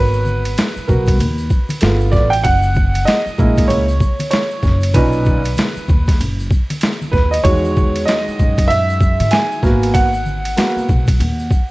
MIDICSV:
0, 0, Header, 1, 5, 480
1, 0, Start_track
1, 0, Key_signature, 5, "minor"
1, 0, Tempo, 625000
1, 1879, Time_signature, 4, 2, 24, 8
1, 8993, End_track
2, 0, Start_track
2, 0, Title_t, "Upright piano"
2, 0, Program_c, 0, 0
2, 0, Note_on_c, 0, 59, 45
2, 0, Note_on_c, 0, 66, 54
2, 0, Note_on_c, 0, 71, 87
2, 407, Note_off_c, 0, 59, 0
2, 410, Note_off_c, 0, 66, 0
2, 671, Note_on_c, 0, 70, 49
2, 674, Note_on_c, 0, 59, 47
2, 676, Note_on_c, 0, 66, 54
2, 890, Note_off_c, 0, 70, 0
2, 892, Note_off_c, 0, 59, 0
2, 893, Note_off_c, 0, 66, 0
2, 1361, Note_off_c, 0, 71, 0
2, 1394, Note_on_c, 0, 57, 50
2, 1398, Note_on_c, 0, 59, 48
2, 1401, Note_on_c, 0, 65, 61
2, 1625, Note_on_c, 0, 74, 92
2, 1735, Note_off_c, 0, 57, 0
2, 1738, Note_off_c, 0, 59, 0
2, 1739, Note_off_c, 0, 65, 0
2, 1767, Note_off_c, 0, 74, 0
2, 1767, Note_on_c, 0, 79, 101
2, 1870, Note_on_c, 0, 78, 120
2, 1872, Note_off_c, 0, 79, 0
2, 2345, Note_on_c, 0, 75, 92
2, 2369, Note_off_c, 0, 78, 0
2, 2598, Note_on_c, 0, 56, 58
2, 2603, Note_on_c, 0, 58, 54
2, 2608, Note_on_c, 0, 64, 64
2, 2824, Note_on_c, 0, 73, 80
2, 2846, Note_off_c, 0, 75, 0
2, 2937, Note_off_c, 0, 56, 0
2, 2940, Note_off_c, 0, 58, 0
2, 2942, Note_off_c, 0, 64, 0
2, 3295, Note_off_c, 0, 73, 0
2, 3306, Note_on_c, 0, 73, 79
2, 3793, Note_on_c, 0, 71, 86
2, 3797, Note_on_c, 0, 46, 61
2, 3804, Note_on_c, 0, 61, 55
2, 3805, Note_on_c, 0, 63, 63
2, 3807, Note_off_c, 0, 73, 0
2, 4137, Note_off_c, 0, 46, 0
2, 4141, Note_off_c, 0, 61, 0
2, 4141, Note_off_c, 0, 63, 0
2, 4725, Note_off_c, 0, 71, 0
2, 5465, Note_on_c, 0, 71, 76
2, 5607, Note_off_c, 0, 71, 0
2, 5615, Note_on_c, 0, 75, 75
2, 5706, Note_off_c, 0, 75, 0
2, 5711, Note_on_c, 0, 73, 100
2, 5716, Note_on_c, 0, 56, 61
2, 5722, Note_on_c, 0, 51, 52
2, 5727, Note_on_c, 0, 66, 64
2, 6186, Note_on_c, 0, 75, 84
2, 6209, Note_off_c, 0, 73, 0
2, 6664, Note_on_c, 0, 76, 94
2, 6687, Note_off_c, 0, 75, 0
2, 7152, Note_on_c, 0, 80, 93
2, 7166, Note_off_c, 0, 76, 0
2, 7367, Note_off_c, 0, 56, 0
2, 7369, Note_off_c, 0, 51, 0
2, 7372, Note_off_c, 0, 66, 0
2, 7392, Note_on_c, 0, 58, 56
2, 7395, Note_on_c, 0, 59, 50
2, 7401, Note_on_c, 0, 66, 58
2, 7604, Note_off_c, 0, 80, 0
2, 7632, Note_on_c, 0, 78, 104
2, 7734, Note_off_c, 0, 58, 0
2, 7736, Note_off_c, 0, 59, 0
2, 7739, Note_off_c, 0, 66, 0
2, 8114, Note_on_c, 0, 58, 46
2, 8117, Note_on_c, 0, 59, 41
2, 8121, Note_on_c, 0, 66, 49
2, 8332, Note_off_c, 0, 58, 0
2, 8334, Note_off_c, 0, 59, 0
2, 8335, Note_off_c, 0, 66, 0
2, 8993, Note_off_c, 0, 78, 0
2, 8993, End_track
3, 0, Start_track
3, 0, Title_t, "Upright bass"
3, 0, Program_c, 1, 32
3, 0, Note_on_c, 1, 32, 101
3, 405, Note_off_c, 1, 32, 0
3, 684, Note_on_c, 1, 35, 88
3, 921, Note_off_c, 1, 35, 0
3, 921, Note_on_c, 1, 39, 94
3, 1140, Note_off_c, 1, 39, 0
3, 1399, Note_on_c, 1, 31, 99
3, 1619, Note_off_c, 1, 31, 0
3, 1634, Note_on_c, 1, 33, 88
3, 1856, Note_off_c, 1, 33, 0
3, 1878, Note_on_c, 1, 30, 104
3, 2328, Note_off_c, 1, 30, 0
3, 2606, Note_on_c, 1, 34, 90
3, 2823, Note_off_c, 1, 34, 0
3, 2837, Note_on_c, 1, 37, 89
3, 3058, Note_off_c, 1, 37, 0
3, 3556, Note_on_c, 1, 30, 95
3, 3777, Note_off_c, 1, 30, 0
3, 3798, Note_on_c, 1, 35, 99
3, 4247, Note_off_c, 1, 35, 0
3, 4528, Note_on_c, 1, 39, 80
3, 4744, Note_off_c, 1, 39, 0
3, 4761, Note_on_c, 1, 30, 83
3, 4980, Note_off_c, 1, 30, 0
3, 5477, Note_on_c, 1, 39, 92
3, 5698, Note_off_c, 1, 39, 0
3, 5718, Note_on_c, 1, 40, 100
3, 6168, Note_off_c, 1, 40, 0
3, 6448, Note_on_c, 1, 42, 92
3, 7039, Note_off_c, 1, 42, 0
3, 7065, Note_on_c, 1, 44, 75
3, 7150, Note_off_c, 1, 44, 0
3, 7396, Note_on_c, 1, 32, 86
3, 8086, Note_off_c, 1, 32, 0
3, 8367, Note_on_c, 1, 35, 90
3, 8583, Note_off_c, 1, 35, 0
3, 8600, Note_on_c, 1, 39, 96
3, 8819, Note_off_c, 1, 39, 0
3, 8993, End_track
4, 0, Start_track
4, 0, Title_t, "Muted upright bass strokes"
4, 585, Note_on_c, 9, 29, 49
4, 661, Note_off_c, 9, 29, 0
4, 2504, Note_on_c, 9, 29, 46
4, 2581, Note_off_c, 9, 29, 0
4, 4424, Note_on_c, 9, 29, 45
4, 4501, Note_off_c, 9, 29, 0
4, 6350, Note_on_c, 9, 29, 44
4, 6427, Note_off_c, 9, 29, 0
4, 8265, Note_on_c, 9, 29, 48
4, 8341, Note_off_c, 9, 29, 0
4, 8993, End_track
5, 0, Start_track
5, 0, Title_t, "Drums"
5, 100, Note_on_c, 9, 82, 51
5, 176, Note_off_c, 9, 82, 0
5, 194, Note_on_c, 9, 63, 43
5, 194, Note_on_c, 9, 82, 43
5, 270, Note_off_c, 9, 63, 0
5, 270, Note_off_c, 9, 82, 0
5, 342, Note_on_c, 9, 82, 40
5, 347, Note_on_c, 9, 51, 51
5, 418, Note_off_c, 9, 82, 0
5, 424, Note_off_c, 9, 51, 0
5, 435, Note_on_c, 9, 82, 60
5, 443, Note_on_c, 9, 44, 51
5, 443, Note_on_c, 9, 51, 71
5, 450, Note_on_c, 9, 38, 109
5, 511, Note_off_c, 9, 82, 0
5, 520, Note_off_c, 9, 44, 0
5, 520, Note_off_c, 9, 51, 0
5, 526, Note_off_c, 9, 38, 0
5, 587, Note_on_c, 9, 82, 45
5, 664, Note_off_c, 9, 82, 0
5, 678, Note_on_c, 9, 64, 62
5, 678, Note_on_c, 9, 82, 42
5, 684, Note_on_c, 9, 36, 75
5, 755, Note_off_c, 9, 64, 0
5, 755, Note_off_c, 9, 82, 0
5, 761, Note_off_c, 9, 36, 0
5, 816, Note_on_c, 9, 82, 39
5, 826, Note_on_c, 9, 36, 97
5, 831, Note_on_c, 9, 51, 58
5, 893, Note_off_c, 9, 82, 0
5, 903, Note_off_c, 9, 36, 0
5, 908, Note_off_c, 9, 51, 0
5, 916, Note_on_c, 9, 64, 56
5, 916, Note_on_c, 9, 82, 63
5, 925, Note_on_c, 9, 51, 60
5, 993, Note_off_c, 9, 64, 0
5, 993, Note_off_c, 9, 82, 0
5, 1002, Note_off_c, 9, 51, 0
5, 1060, Note_on_c, 9, 82, 45
5, 1136, Note_off_c, 9, 82, 0
5, 1152, Note_on_c, 9, 82, 55
5, 1156, Note_on_c, 9, 36, 78
5, 1229, Note_off_c, 9, 82, 0
5, 1232, Note_off_c, 9, 36, 0
5, 1297, Note_on_c, 9, 63, 61
5, 1297, Note_on_c, 9, 82, 45
5, 1308, Note_on_c, 9, 51, 53
5, 1374, Note_off_c, 9, 63, 0
5, 1374, Note_off_c, 9, 82, 0
5, 1384, Note_off_c, 9, 51, 0
5, 1388, Note_on_c, 9, 44, 53
5, 1388, Note_on_c, 9, 51, 73
5, 1395, Note_on_c, 9, 82, 62
5, 1406, Note_on_c, 9, 38, 116
5, 1465, Note_off_c, 9, 44, 0
5, 1465, Note_off_c, 9, 51, 0
5, 1472, Note_off_c, 9, 82, 0
5, 1482, Note_off_c, 9, 38, 0
5, 1536, Note_on_c, 9, 82, 43
5, 1612, Note_off_c, 9, 82, 0
5, 1630, Note_on_c, 9, 64, 55
5, 1630, Note_on_c, 9, 82, 40
5, 1633, Note_on_c, 9, 36, 88
5, 1651, Note_on_c, 9, 38, 38
5, 1707, Note_off_c, 9, 64, 0
5, 1707, Note_off_c, 9, 82, 0
5, 1710, Note_off_c, 9, 36, 0
5, 1728, Note_off_c, 9, 38, 0
5, 1776, Note_on_c, 9, 82, 50
5, 1790, Note_on_c, 9, 51, 59
5, 1853, Note_off_c, 9, 82, 0
5, 1867, Note_off_c, 9, 51, 0
5, 1873, Note_on_c, 9, 82, 65
5, 1877, Note_on_c, 9, 36, 106
5, 1878, Note_on_c, 9, 51, 76
5, 1950, Note_off_c, 9, 82, 0
5, 1954, Note_off_c, 9, 36, 0
5, 1954, Note_off_c, 9, 51, 0
5, 2013, Note_on_c, 9, 82, 53
5, 2090, Note_off_c, 9, 82, 0
5, 2110, Note_on_c, 9, 63, 47
5, 2110, Note_on_c, 9, 82, 46
5, 2124, Note_on_c, 9, 36, 81
5, 2187, Note_off_c, 9, 63, 0
5, 2187, Note_off_c, 9, 82, 0
5, 2201, Note_off_c, 9, 36, 0
5, 2259, Note_on_c, 9, 82, 40
5, 2267, Note_on_c, 9, 51, 56
5, 2336, Note_off_c, 9, 82, 0
5, 2343, Note_off_c, 9, 51, 0
5, 2352, Note_on_c, 9, 82, 61
5, 2362, Note_on_c, 9, 44, 49
5, 2362, Note_on_c, 9, 51, 70
5, 2368, Note_on_c, 9, 38, 116
5, 2428, Note_off_c, 9, 82, 0
5, 2439, Note_off_c, 9, 44, 0
5, 2439, Note_off_c, 9, 51, 0
5, 2445, Note_off_c, 9, 38, 0
5, 2508, Note_on_c, 9, 82, 43
5, 2585, Note_off_c, 9, 82, 0
5, 2597, Note_on_c, 9, 64, 54
5, 2597, Note_on_c, 9, 82, 44
5, 2605, Note_on_c, 9, 36, 77
5, 2674, Note_off_c, 9, 64, 0
5, 2674, Note_off_c, 9, 82, 0
5, 2681, Note_off_c, 9, 36, 0
5, 2738, Note_on_c, 9, 82, 43
5, 2747, Note_on_c, 9, 36, 95
5, 2751, Note_on_c, 9, 51, 61
5, 2815, Note_off_c, 9, 82, 0
5, 2824, Note_off_c, 9, 36, 0
5, 2828, Note_off_c, 9, 51, 0
5, 2838, Note_on_c, 9, 64, 56
5, 2838, Note_on_c, 9, 82, 58
5, 2844, Note_on_c, 9, 51, 56
5, 2915, Note_off_c, 9, 64, 0
5, 2915, Note_off_c, 9, 82, 0
5, 2921, Note_off_c, 9, 51, 0
5, 2984, Note_on_c, 9, 82, 42
5, 3060, Note_off_c, 9, 82, 0
5, 3075, Note_on_c, 9, 36, 86
5, 3075, Note_on_c, 9, 82, 55
5, 3152, Note_off_c, 9, 36, 0
5, 3152, Note_off_c, 9, 82, 0
5, 3221, Note_on_c, 9, 63, 63
5, 3221, Note_on_c, 9, 82, 46
5, 3225, Note_on_c, 9, 51, 53
5, 3297, Note_off_c, 9, 63, 0
5, 3297, Note_off_c, 9, 82, 0
5, 3301, Note_off_c, 9, 51, 0
5, 3310, Note_on_c, 9, 44, 50
5, 3310, Note_on_c, 9, 51, 70
5, 3316, Note_on_c, 9, 82, 57
5, 3328, Note_on_c, 9, 38, 127
5, 3387, Note_off_c, 9, 44, 0
5, 3387, Note_off_c, 9, 51, 0
5, 3393, Note_off_c, 9, 82, 0
5, 3404, Note_off_c, 9, 38, 0
5, 3459, Note_on_c, 9, 82, 44
5, 3535, Note_off_c, 9, 82, 0
5, 3551, Note_on_c, 9, 64, 54
5, 3551, Note_on_c, 9, 82, 42
5, 3554, Note_on_c, 9, 36, 84
5, 3573, Note_on_c, 9, 38, 36
5, 3628, Note_off_c, 9, 64, 0
5, 3628, Note_off_c, 9, 82, 0
5, 3631, Note_off_c, 9, 36, 0
5, 3650, Note_off_c, 9, 38, 0
5, 3695, Note_on_c, 9, 82, 46
5, 3712, Note_on_c, 9, 51, 57
5, 3772, Note_off_c, 9, 82, 0
5, 3788, Note_off_c, 9, 51, 0
5, 3793, Note_on_c, 9, 82, 66
5, 3797, Note_on_c, 9, 36, 101
5, 3798, Note_on_c, 9, 51, 73
5, 3869, Note_off_c, 9, 82, 0
5, 3874, Note_off_c, 9, 36, 0
5, 3875, Note_off_c, 9, 51, 0
5, 3934, Note_on_c, 9, 82, 49
5, 4011, Note_off_c, 9, 82, 0
5, 4032, Note_on_c, 9, 63, 48
5, 4032, Note_on_c, 9, 82, 45
5, 4044, Note_on_c, 9, 36, 85
5, 4109, Note_off_c, 9, 63, 0
5, 4109, Note_off_c, 9, 82, 0
5, 4121, Note_off_c, 9, 36, 0
5, 4178, Note_on_c, 9, 82, 43
5, 4189, Note_on_c, 9, 51, 57
5, 4255, Note_off_c, 9, 82, 0
5, 4266, Note_off_c, 9, 51, 0
5, 4271, Note_on_c, 9, 63, 51
5, 4271, Note_on_c, 9, 82, 65
5, 4285, Note_on_c, 9, 44, 53
5, 4285, Note_on_c, 9, 51, 68
5, 4292, Note_on_c, 9, 38, 110
5, 4348, Note_off_c, 9, 63, 0
5, 4348, Note_off_c, 9, 82, 0
5, 4362, Note_off_c, 9, 44, 0
5, 4362, Note_off_c, 9, 51, 0
5, 4369, Note_off_c, 9, 38, 0
5, 4425, Note_on_c, 9, 82, 44
5, 4502, Note_off_c, 9, 82, 0
5, 4517, Note_on_c, 9, 63, 58
5, 4517, Note_on_c, 9, 64, 57
5, 4517, Note_on_c, 9, 82, 43
5, 4526, Note_on_c, 9, 36, 79
5, 4594, Note_off_c, 9, 63, 0
5, 4594, Note_off_c, 9, 64, 0
5, 4594, Note_off_c, 9, 82, 0
5, 4603, Note_off_c, 9, 36, 0
5, 4661, Note_on_c, 9, 82, 39
5, 4668, Note_on_c, 9, 36, 89
5, 4674, Note_on_c, 9, 51, 55
5, 4681, Note_on_c, 9, 38, 36
5, 4738, Note_off_c, 9, 82, 0
5, 4745, Note_off_c, 9, 36, 0
5, 4750, Note_off_c, 9, 51, 0
5, 4758, Note_off_c, 9, 38, 0
5, 4763, Note_on_c, 9, 64, 54
5, 4763, Note_on_c, 9, 82, 59
5, 4767, Note_on_c, 9, 51, 56
5, 4840, Note_off_c, 9, 64, 0
5, 4840, Note_off_c, 9, 82, 0
5, 4844, Note_off_c, 9, 51, 0
5, 4910, Note_on_c, 9, 82, 46
5, 4986, Note_off_c, 9, 82, 0
5, 4997, Note_on_c, 9, 36, 89
5, 5001, Note_on_c, 9, 82, 52
5, 5073, Note_off_c, 9, 36, 0
5, 5078, Note_off_c, 9, 82, 0
5, 5147, Note_on_c, 9, 51, 54
5, 5147, Note_on_c, 9, 63, 66
5, 5147, Note_on_c, 9, 82, 44
5, 5223, Note_off_c, 9, 63, 0
5, 5223, Note_off_c, 9, 82, 0
5, 5224, Note_off_c, 9, 51, 0
5, 5231, Note_on_c, 9, 44, 52
5, 5231, Note_on_c, 9, 51, 66
5, 5241, Note_on_c, 9, 82, 60
5, 5248, Note_on_c, 9, 38, 120
5, 5308, Note_off_c, 9, 44, 0
5, 5308, Note_off_c, 9, 51, 0
5, 5318, Note_off_c, 9, 82, 0
5, 5325, Note_off_c, 9, 38, 0
5, 5387, Note_on_c, 9, 63, 57
5, 5387, Note_on_c, 9, 82, 45
5, 5464, Note_off_c, 9, 63, 0
5, 5464, Note_off_c, 9, 82, 0
5, 5476, Note_on_c, 9, 36, 88
5, 5479, Note_on_c, 9, 64, 52
5, 5479, Note_on_c, 9, 82, 40
5, 5495, Note_on_c, 9, 38, 37
5, 5553, Note_off_c, 9, 36, 0
5, 5556, Note_off_c, 9, 64, 0
5, 5556, Note_off_c, 9, 82, 0
5, 5572, Note_off_c, 9, 38, 0
5, 5627, Note_on_c, 9, 82, 48
5, 5634, Note_on_c, 9, 51, 56
5, 5704, Note_off_c, 9, 82, 0
5, 5711, Note_off_c, 9, 51, 0
5, 5719, Note_on_c, 9, 36, 105
5, 5720, Note_on_c, 9, 51, 75
5, 5723, Note_on_c, 9, 82, 59
5, 5796, Note_off_c, 9, 36, 0
5, 5796, Note_off_c, 9, 51, 0
5, 5800, Note_off_c, 9, 82, 0
5, 5867, Note_on_c, 9, 82, 52
5, 5943, Note_off_c, 9, 82, 0
5, 5961, Note_on_c, 9, 63, 45
5, 5961, Note_on_c, 9, 82, 43
5, 5966, Note_on_c, 9, 36, 87
5, 6038, Note_off_c, 9, 63, 0
5, 6038, Note_off_c, 9, 82, 0
5, 6043, Note_off_c, 9, 36, 0
5, 6110, Note_on_c, 9, 51, 57
5, 6110, Note_on_c, 9, 82, 42
5, 6186, Note_off_c, 9, 51, 0
5, 6186, Note_off_c, 9, 82, 0
5, 6202, Note_on_c, 9, 82, 64
5, 6205, Note_on_c, 9, 44, 51
5, 6205, Note_on_c, 9, 51, 69
5, 6212, Note_on_c, 9, 38, 115
5, 6279, Note_off_c, 9, 82, 0
5, 6282, Note_off_c, 9, 44, 0
5, 6282, Note_off_c, 9, 51, 0
5, 6288, Note_off_c, 9, 38, 0
5, 6356, Note_on_c, 9, 82, 42
5, 6433, Note_off_c, 9, 82, 0
5, 6445, Note_on_c, 9, 64, 58
5, 6445, Note_on_c, 9, 82, 41
5, 6447, Note_on_c, 9, 36, 78
5, 6522, Note_off_c, 9, 64, 0
5, 6522, Note_off_c, 9, 82, 0
5, 6524, Note_off_c, 9, 36, 0
5, 6585, Note_on_c, 9, 82, 43
5, 6589, Note_on_c, 9, 36, 92
5, 6593, Note_on_c, 9, 51, 61
5, 6661, Note_off_c, 9, 82, 0
5, 6666, Note_off_c, 9, 36, 0
5, 6670, Note_off_c, 9, 51, 0
5, 6685, Note_on_c, 9, 51, 53
5, 6688, Note_on_c, 9, 64, 57
5, 6688, Note_on_c, 9, 82, 54
5, 6762, Note_off_c, 9, 51, 0
5, 6765, Note_off_c, 9, 64, 0
5, 6765, Note_off_c, 9, 82, 0
5, 6830, Note_on_c, 9, 82, 41
5, 6907, Note_off_c, 9, 82, 0
5, 6917, Note_on_c, 9, 36, 90
5, 6921, Note_on_c, 9, 82, 57
5, 6993, Note_off_c, 9, 36, 0
5, 6998, Note_off_c, 9, 82, 0
5, 7066, Note_on_c, 9, 51, 54
5, 7067, Note_on_c, 9, 63, 64
5, 7067, Note_on_c, 9, 82, 46
5, 7143, Note_off_c, 9, 51, 0
5, 7144, Note_off_c, 9, 63, 0
5, 7144, Note_off_c, 9, 82, 0
5, 7149, Note_on_c, 9, 44, 47
5, 7149, Note_on_c, 9, 51, 70
5, 7161, Note_on_c, 9, 82, 61
5, 7166, Note_on_c, 9, 38, 113
5, 7225, Note_off_c, 9, 44, 0
5, 7225, Note_off_c, 9, 51, 0
5, 7237, Note_off_c, 9, 82, 0
5, 7243, Note_off_c, 9, 38, 0
5, 7308, Note_on_c, 9, 82, 43
5, 7385, Note_off_c, 9, 82, 0
5, 7395, Note_on_c, 9, 36, 85
5, 7399, Note_on_c, 9, 64, 53
5, 7399, Note_on_c, 9, 82, 39
5, 7411, Note_on_c, 9, 38, 34
5, 7471, Note_off_c, 9, 36, 0
5, 7475, Note_off_c, 9, 64, 0
5, 7475, Note_off_c, 9, 82, 0
5, 7488, Note_off_c, 9, 38, 0
5, 7545, Note_on_c, 9, 82, 50
5, 7551, Note_on_c, 9, 51, 51
5, 7622, Note_off_c, 9, 82, 0
5, 7628, Note_off_c, 9, 51, 0
5, 7638, Note_on_c, 9, 36, 104
5, 7639, Note_on_c, 9, 51, 74
5, 7643, Note_on_c, 9, 82, 60
5, 7715, Note_off_c, 9, 36, 0
5, 7715, Note_off_c, 9, 51, 0
5, 7719, Note_off_c, 9, 82, 0
5, 7783, Note_on_c, 9, 82, 54
5, 7860, Note_off_c, 9, 82, 0
5, 7876, Note_on_c, 9, 63, 45
5, 7876, Note_on_c, 9, 82, 42
5, 7953, Note_off_c, 9, 63, 0
5, 7953, Note_off_c, 9, 82, 0
5, 8025, Note_on_c, 9, 82, 40
5, 8027, Note_on_c, 9, 51, 57
5, 8102, Note_off_c, 9, 82, 0
5, 8104, Note_off_c, 9, 51, 0
5, 8120, Note_on_c, 9, 82, 67
5, 8122, Note_on_c, 9, 44, 49
5, 8122, Note_on_c, 9, 51, 71
5, 8129, Note_on_c, 9, 38, 110
5, 8197, Note_off_c, 9, 82, 0
5, 8199, Note_off_c, 9, 44, 0
5, 8199, Note_off_c, 9, 51, 0
5, 8205, Note_off_c, 9, 38, 0
5, 8272, Note_on_c, 9, 82, 45
5, 8349, Note_off_c, 9, 82, 0
5, 8359, Note_on_c, 9, 64, 60
5, 8359, Note_on_c, 9, 82, 40
5, 8366, Note_on_c, 9, 36, 77
5, 8436, Note_off_c, 9, 64, 0
5, 8436, Note_off_c, 9, 82, 0
5, 8443, Note_off_c, 9, 36, 0
5, 8502, Note_on_c, 9, 82, 42
5, 8508, Note_on_c, 9, 36, 97
5, 8512, Note_on_c, 9, 51, 60
5, 8578, Note_off_c, 9, 82, 0
5, 8585, Note_off_c, 9, 36, 0
5, 8589, Note_off_c, 9, 51, 0
5, 8603, Note_on_c, 9, 64, 60
5, 8603, Note_on_c, 9, 82, 64
5, 8605, Note_on_c, 9, 51, 55
5, 8680, Note_off_c, 9, 64, 0
5, 8680, Note_off_c, 9, 82, 0
5, 8682, Note_off_c, 9, 51, 0
5, 8746, Note_on_c, 9, 82, 46
5, 8823, Note_off_c, 9, 82, 0
5, 8836, Note_on_c, 9, 36, 88
5, 8839, Note_on_c, 9, 82, 53
5, 8913, Note_off_c, 9, 36, 0
5, 8915, Note_off_c, 9, 82, 0
5, 8993, End_track
0, 0, End_of_file